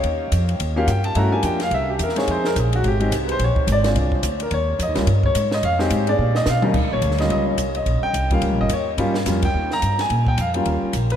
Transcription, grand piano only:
Already playing: C#5
0.76 A#3 C#4 F4 G4 F5
0.86 F#5
0.90 G5
1.05 A5
1.16 A3 C#4 E4 F#4 A#5
1.32 A#3 D4 F4 G4 G#5
1.45 G5
1.63 F5
1.74 E5
1.90 G4
2.04 A#4
2.15 G#3 C4 D#4 G#4 C#5
2.31 C5
2.46 A#4
2.60 G#4
2.76 F#4
2.88 G4
3.00 G#3 C4 D#4 G4
3.32 C5
3.44 C#5
3.72 D5
3.84 G#3 C4 D4 F4
4.42 A#4
4.54 C#5
4.83 D#5
4.95 G3 A#3 C#4 F4
5.26 C#5
5.54 D#5
5.65 F5
5.79 G#3 C4 D#4 G4
6.07 G#3 B3 D4 G#4 D5
6.36 D#5
6.49 F5
6.62 D#2 G3 A#3 C#4 D#4
6.93 C#5
7.19 G3 A#3 C#4 F4 D#5
7.32 D#5
7.77 D#5
8.03 G5
8.31 G3 A#3 C#4 F4 F5
8.61 D#5
8.73 C#5
8.98 G3 A#3 C#4 F4
9.26 G3 A#3 C#4 F4
9.45 G5
9.73 A#5
10.01 G#5
10.28 G5
10.41 F5
10.55 G3 A#3 C#4 F4
11.12 B4

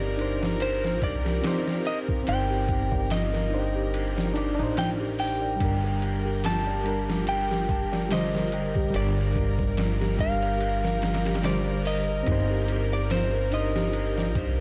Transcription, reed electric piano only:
Already playing: C4 D#4 C5
0.17 D4 D#4 C5
1.43 C4 D#4
1.47 C5
2.24 C4
2.28 D#4
2.32 C5
3.50 D4 D#4
3.54 C5
4.34 D4 D#4
4.38 D5
4.55 D4
4.59 D#4
4.63 C5
5.56 G3
5.60 D4
5.65 A#4
6.84 G3 D4
6.88 A#4
8.09 D3 G3
8.14 C5
8.91 G3 D4
8.99 A#4
10.18 G3 D4 A#4
11.42 D3 G3
11.46 C5
12.23 C4
12.27 D#4
12.32 C5
13.51 D4 D#4
13.55 C5

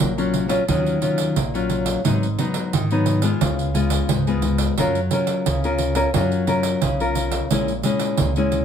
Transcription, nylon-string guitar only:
Already playing: F#3 C#4 F4
0.00 A#2
0.18 F#3 C#4 F4
0.48 F#3 C#4 F4
0.68 D#3 F#3 C#4 F4
1.01 F#3 C#4 F4
1.36 A#2
1.54 F#3 C#4 F4
2.04 G#2 F#3 B3 D#4
2.39 F#3 B3 D#4
2.73 D#3
2.91 F#3 B3 D#4
3.23 G#3 B3 F4
3.41 C#3
3.74 G#3 B3 F4
4.10 G#2
4.27 G#3 B3 F4
4.78 F#3 C#4 F4 A#4
5.12 C#4 F4 A#4
5.47 C#3
5.64 C#4 F4 A#4
5.95 C#4 F4 A#4
6.14 F#3 C#4 F4 A#4
6.47 C#4 F4 A#4
6.82 C#3
7.00 C#4 F4 A#4
7.51 A#2 G#3 C#4 E4
7.84 G#3 C#4 E4
8.19 A#2
8.37 G#3 C#4 E4

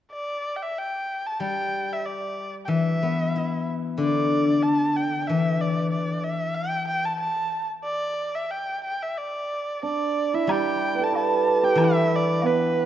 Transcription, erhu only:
0.12 D5
0.56 G5
0.62 E5
0.78 G5
1.26 A5
1.42 G5
1.93 E5
2.06 D5
2.65 E5 G5
4.00 D5
4.63 A5
4.96 G5
5.21 G5
5.27 E5
5.61 D5
5.91 D5
6.24 E5
6.55 G5
6.87 G5
7.05 A5
7.19 A5
7.84 D5
8.35 E5
8.51 G5
8.84 G5
9.02 E5
9.18 D5
9.84 D5
10.34 E5
10.51 G5
11.04 A5
11.17 A5
11.64 G5
11.84 E5
12.15 D5
12.46 B4

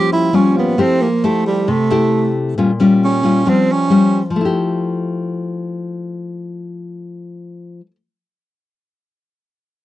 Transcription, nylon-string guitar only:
Already playing: F3 G3 C#4 F4
0.33 G3 C#4 F4
0.78 F3 A3 E4 G4
1.24 A3 E4 G4
1.68 C3
1.90 A3 E4 G4
2.58 A#2 G3 C#4 F4
2.80 G3 C#4 F4
3.23 G3 C#4 F4
3.46 F3 G3 C#4 F4
3.90 G3 C#4 F4
4.30 F3
4.36 A3
4.41 E4
4.45 G4

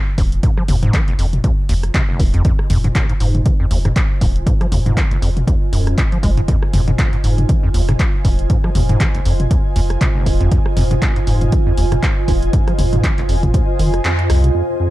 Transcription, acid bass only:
0.18 G#2
0.43 G#2
0.57 F3
0.68 D#2
0.83 G#2
0.94 F3
1.08 F1
1.19 F2
1.44 D#2
1.69 D#2
1.94 C3
2.09 F1
2.20 F2
2.34 F2
2.45 F2
2.70 F2
2.84 G#2
2.95 F1
3.10 G#2
3.20 G#2
3.46 F3
3.60 F2
3.71 D#2
3.85 G#2
4.21 G#2
4.47 G#2
4.61 F3
4.72 D#2
4.86 G#2
4.97 F3
5.11 F1
5.22 F2
5.47 D#2
5.73 F#2
5.98 F2
6.12 F3
6.23 G#3
6.37 G#2
6.48 F2
6.74 F2
6.88 G#2
6.99 F1
7.13 G#2
7.24 G#2
7.49 F3
7.63 F2
7.74 D#2
7.89 G#2
8.25 G#2
8.50 G#2
8.64 F3
8.75 D#2
8.89 G#2
9.00 F3
9.14 F1
9.25 F2
9.51 D#2
9.76 D#2
10.01 C3
10.15 F1
10.26 F2
10.40 F2
10.77 F2
10.91 G#2
11.02 F1
11.16 G#2
11.27 G#2
11.52 F3
11.67 F2
11.78 D#2
11.92 G#2
12.28 G#2
12.53 G#2
12.67 F3
12.78 D#2
12.93 G#2
13.04 F3
13.18 F1
13.29 F2
13.54 D#2
13.79 D#3
14.04 F2
14.19 F#2
14.30 F2
14.44 C3
14.55 F2
14.80 F2

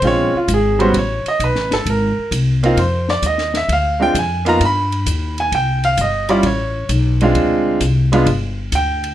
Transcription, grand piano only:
0.03 G#3 C4 C#4 F4
0.07 C#5
0.37 F4
0.54 G#4
0.79 G3 B3 C#4 F#4 C5
0.98 C#5
1.28 D#5
1.44 B4
1.73 A4
1.90 A#4
2.63 A#3 C4 D#4 F4
2.79 C5
3.10 D5
3.26 D#5
3.57 E5
3.73 F5
4.00 G#3 C4 D4 F4 G5
4.19 G#5
4.45 A#3 B3 D#4 F4 A#5
4.65 B5
5.40 G#5
5.55 G5
5.85 F5
6.01 D#5
6.29 G3 C#4 E4 F4 D5
6.46 C#5
7.22 G#3 C4 D4 F4
8.12 G#3 B3 D4 F4
8.75 G5

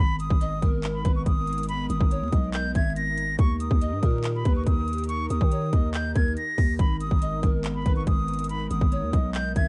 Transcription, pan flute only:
0.41 D#5
0.62 A#4
1.05 B4
2.11 C#5
2.32 D#5
2.75 E5
3.81 D#5
4.03 A#4
4.45 B4
5.52 C#5
5.73 D#5
6.16 A#4
7.22 D#5
7.43 A#4
7.86 B4
8.92 C#5
9.13 D#5
9.56 E5

